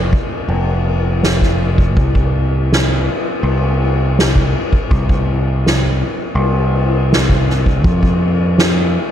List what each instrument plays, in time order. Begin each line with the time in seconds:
Already playing: picked electric bass F1
0.12 kick, ride
0.49 picked electric bass F1, ride
0.87 ride
1.22 snare, ride
1.41 kick, snare
1.60 ride
1.78 kick
1.97 picked electric bass C2, kick, ride
2.15 kick
2.34 ride
2.71 snare, ride
3.08 ride
3.43 picked electric bass C2, ride
3.81 ride
4.18 snare, ride
4.36 kick
4.54 ride
4.73 kick
4.91 picked electric bass C2, kick, ride
5.09 kick
5.28 ride
5.65 snare, ride
6.01 ride
6.35 picked electric bass C2, ride
6.75 ride
7.12 snare, ride
7.30 kick
7.49 snare, ride
7.66 kick
7.84 picked electric bass F2, kick, ride
8.03 kick
8.21 ride
8.57 snare, ride
8.94 ride